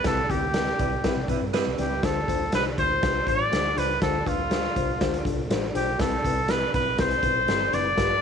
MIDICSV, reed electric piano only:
0, 0, Header, 1, 2, 480
1, 0, Start_track
1, 0, Tempo, 495868
1, 47, Time_signature, 4, 2, 24, 8
1, 7953, End_track
2, 0, Start_track
2, 0, Title_t, "Reed electric piano"
2, 0, Program_c, 0, 4
2, 50, Note_on_c, 0, 60, 86
2, 52, Note_on_c, 0, 48, 57
2, 52, Note_on_c, 0, 64, 77
2, 57, Note_on_c, 0, 71, 92
2, 194, Note_off_c, 0, 60, 0
2, 196, Note_off_c, 0, 64, 0
2, 198, Note_off_c, 0, 71, 0
2, 292, Note_on_c, 0, 60, 64
2, 293, Note_on_c, 0, 64, 59
2, 298, Note_on_c, 0, 67, 70
2, 436, Note_off_c, 0, 60, 0
2, 436, Note_off_c, 0, 64, 0
2, 438, Note_off_c, 0, 67, 0
2, 535, Note_on_c, 0, 60, 66
2, 537, Note_on_c, 0, 64, 57
2, 542, Note_on_c, 0, 71, 68
2, 677, Note_off_c, 0, 60, 0
2, 678, Note_off_c, 0, 64, 0
2, 681, Note_off_c, 0, 71, 0
2, 732, Note_off_c, 0, 48, 0
2, 775, Note_on_c, 0, 64, 59
2, 776, Note_on_c, 0, 60, 61
2, 778, Note_on_c, 0, 74, 69
2, 917, Note_off_c, 0, 64, 0
2, 918, Note_off_c, 0, 60, 0
2, 919, Note_off_c, 0, 74, 0
2, 1009, Note_on_c, 0, 60, 96
2, 1013, Note_on_c, 0, 64, 85
2, 1016, Note_on_c, 0, 71, 103
2, 1154, Note_off_c, 0, 60, 0
2, 1156, Note_off_c, 0, 64, 0
2, 1158, Note_off_c, 0, 71, 0
2, 1248, Note_on_c, 0, 60, 80
2, 1250, Note_on_c, 0, 64, 72
2, 1252, Note_on_c, 0, 71, 89
2, 1394, Note_off_c, 0, 60, 0
2, 1395, Note_off_c, 0, 64, 0
2, 1396, Note_off_c, 0, 71, 0
2, 1485, Note_on_c, 0, 60, 75
2, 1488, Note_on_c, 0, 64, 68
2, 1493, Note_on_c, 0, 71, 82
2, 1633, Note_off_c, 0, 60, 0
2, 1634, Note_off_c, 0, 64, 0
2, 1637, Note_off_c, 0, 71, 0
2, 1722, Note_on_c, 0, 60, 65
2, 1722, Note_on_c, 0, 64, 59
2, 1730, Note_on_c, 0, 74, 67
2, 1871, Note_off_c, 0, 60, 0
2, 1871, Note_off_c, 0, 64, 0
2, 1875, Note_off_c, 0, 74, 0
2, 1965, Note_on_c, 0, 62, 86
2, 1967, Note_on_c, 0, 50, 59
2, 1967, Note_on_c, 0, 65, 80
2, 1972, Note_on_c, 0, 72, 94
2, 2113, Note_off_c, 0, 62, 0
2, 2114, Note_off_c, 0, 65, 0
2, 2116, Note_off_c, 0, 72, 0
2, 2207, Note_on_c, 0, 62, 65
2, 2211, Note_on_c, 0, 65, 55
2, 2212, Note_on_c, 0, 72, 69
2, 2354, Note_off_c, 0, 62, 0
2, 2356, Note_off_c, 0, 65, 0
2, 2356, Note_off_c, 0, 72, 0
2, 2453, Note_on_c, 0, 62, 67
2, 2456, Note_on_c, 0, 65, 58
2, 2459, Note_on_c, 0, 72, 73
2, 2596, Note_off_c, 0, 62, 0
2, 2598, Note_off_c, 0, 65, 0
2, 2599, Note_off_c, 0, 72, 0
2, 2650, Note_off_c, 0, 50, 0
2, 2694, Note_on_c, 0, 62, 63
2, 2699, Note_on_c, 0, 65, 57
2, 2700, Note_on_c, 0, 72, 68
2, 2837, Note_off_c, 0, 62, 0
2, 2839, Note_off_c, 0, 65, 0
2, 2840, Note_off_c, 0, 72, 0
2, 2925, Note_on_c, 0, 62, 80
2, 2927, Note_on_c, 0, 65, 75
2, 2934, Note_on_c, 0, 71, 91
2, 3073, Note_off_c, 0, 62, 0
2, 3074, Note_off_c, 0, 65, 0
2, 3077, Note_off_c, 0, 71, 0
2, 3160, Note_on_c, 0, 62, 65
2, 3167, Note_on_c, 0, 65, 60
2, 3168, Note_on_c, 0, 72, 70
2, 3310, Note_off_c, 0, 62, 0
2, 3314, Note_off_c, 0, 65, 0
2, 3314, Note_off_c, 0, 72, 0
2, 3402, Note_on_c, 0, 62, 67
2, 3406, Note_on_c, 0, 65, 57
2, 3408, Note_on_c, 0, 72, 68
2, 3551, Note_off_c, 0, 62, 0
2, 3553, Note_off_c, 0, 65, 0
2, 3554, Note_off_c, 0, 72, 0
2, 3643, Note_on_c, 0, 62, 62
2, 3643, Note_on_c, 0, 65, 60
2, 3648, Note_on_c, 0, 72, 74
2, 3791, Note_off_c, 0, 62, 0
2, 3792, Note_off_c, 0, 65, 0
2, 3794, Note_off_c, 0, 72, 0
2, 3889, Note_on_c, 0, 62, 85
2, 3893, Note_on_c, 0, 50, 58
2, 3893, Note_on_c, 0, 72, 97
2, 3895, Note_on_c, 0, 65, 77
2, 4034, Note_off_c, 0, 62, 0
2, 4036, Note_off_c, 0, 72, 0
2, 4037, Note_off_c, 0, 65, 0
2, 4121, Note_on_c, 0, 62, 64
2, 4125, Note_on_c, 0, 71, 69
2, 4126, Note_on_c, 0, 65, 59
2, 4271, Note_off_c, 0, 62, 0
2, 4273, Note_off_c, 0, 65, 0
2, 4273, Note_off_c, 0, 71, 0
2, 4367, Note_on_c, 0, 62, 64
2, 4369, Note_on_c, 0, 65, 62
2, 4373, Note_on_c, 0, 72, 70
2, 4513, Note_off_c, 0, 62, 0
2, 4514, Note_off_c, 0, 65, 0
2, 4516, Note_off_c, 0, 72, 0
2, 4571, Note_off_c, 0, 50, 0
2, 4612, Note_on_c, 0, 62, 62
2, 4614, Note_on_c, 0, 65, 58
2, 4616, Note_on_c, 0, 72, 72
2, 4756, Note_off_c, 0, 62, 0
2, 4757, Note_off_c, 0, 65, 0
2, 4758, Note_off_c, 0, 72, 0
2, 4848, Note_on_c, 0, 62, 99
2, 4851, Note_on_c, 0, 65, 84
2, 4856, Note_on_c, 0, 72, 108
2, 4993, Note_off_c, 0, 62, 0
2, 4995, Note_off_c, 0, 65, 0
2, 4997, Note_off_c, 0, 72, 0
2, 5081, Note_on_c, 0, 62, 80
2, 5085, Note_on_c, 0, 65, 70
2, 5089, Note_on_c, 0, 69, 83
2, 5230, Note_off_c, 0, 62, 0
2, 5232, Note_off_c, 0, 65, 0
2, 5234, Note_off_c, 0, 69, 0
2, 5329, Note_on_c, 0, 62, 76
2, 5332, Note_on_c, 0, 72, 89
2, 5333, Note_on_c, 0, 65, 69
2, 5474, Note_off_c, 0, 62, 0
2, 5475, Note_off_c, 0, 72, 0
2, 5476, Note_off_c, 0, 65, 0
2, 5557, Note_on_c, 0, 62, 66
2, 5565, Note_on_c, 0, 65, 60
2, 5566, Note_on_c, 0, 72, 75
2, 5708, Note_off_c, 0, 62, 0
2, 5712, Note_off_c, 0, 65, 0
2, 5712, Note_off_c, 0, 72, 0
2, 5809, Note_on_c, 0, 60, 90
2, 5815, Note_on_c, 0, 48, 59
2, 5816, Note_on_c, 0, 64, 83
2, 5817, Note_on_c, 0, 71, 96
2, 5954, Note_off_c, 0, 60, 0
2, 5957, Note_off_c, 0, 64, 0
2, 5958, Note_off_c, 0, 71, 0
2, 6055, Note_on_c, 0, 60, 66
2, 6058, Note_on_c, 0, 64, 60
2, 6063, Note_on_c, 0, 71, 73
2, 6197, Note_off_c, 0, 60, 0
2, 6198, Note_off_c, 0, 64, 0
2, 6201, Note_off_c, 0, 71, 0
2, 6283, Note_on_c, 0, 60, 68
2, 6286, Note_on_c, 0, 64, 62
2, 6286, Note_on_c, 0, 71, 74
2, 6431, Note_off_c, 0, 60, 0
2, 6432, Note_off_c, 0, 64, 0
2, 6432, Note_off_c, 0, 71, 0
2, 6492, Note_off_c, 0, 48, 0
2, 6522, Note_on_c, 0, 60, 64
2, 6527, Note_on_c, 0, 64, 58
2, 6530, Note_on_c, 0, 71, 70
2, 6670, Note_off_c, 0, 60, 0
2, 6672, Note_off_c, 0, 64, 0
2, 6674, Note_off_c, 0, 71, 0
2, 6772, Note_on_c, 0, 64, 74
2, 6774, Note_on_c, 0, 60, 82
2, 6776, Note_on_c, 0, 71, 93
2, 6915, Note_off_c, 0, 64, 0
2, 6916, Note_off_c, 0, 60, 0
2, 6917, Note_off_c, 0, 71, 0
2, 7002, Note_on_c, 0, 60, 68
2, 7003, Note_on_c, 0, 64, 58
2, 7008, Note_on_c, 0, 71, 73
2, 7150, Note_off_c, 0, 60, 0
2, 7150, Note_off_c, 0, 64, 0
2, 7153, Note_off_c, 0, 71, 0
2, 7248, Note_on_c, 0, 60, 65
2, 7252, Note_on_c, 0, 64, 58
2, 7255, Note_on_c, 0, 69, 70
2, 7392, Note_off_c, 0, 60, 0
2, 7394, Note_off_c, 0, 64, 0
2, 7396, Note_off_c, 0, 69, 0
2, 7484, Note_on_c, 0, 60, 66
2, 7487, Note_on_c, 0, 64, 63
2, 7492, Note_on_c, 0, 71, 73
2, 7630, Note_off_c, 0, 60, 0
2, 7632, Note_off_c, 0, 64, 0
2, 7634, Note_off_c, 0, 71, 0
2, 7727, Note_on_c, 0, 43, 61
2, 7727, Note_on_c, 0, 65, 89
2, 7727, Note_on_c, 0, 67, 83
2, 7730, Note_on_c, 0, 71, 100
2, 7871, Note_off_c, 0, 67, 0
2, 7872, Note_off_c, 0, 65, 0
2, 7873, Note_off_c, 0, 71, 0
2, 7953, Note_off_c, 0, 43, 0
2, 7953, End_track
0, 0, End_of_file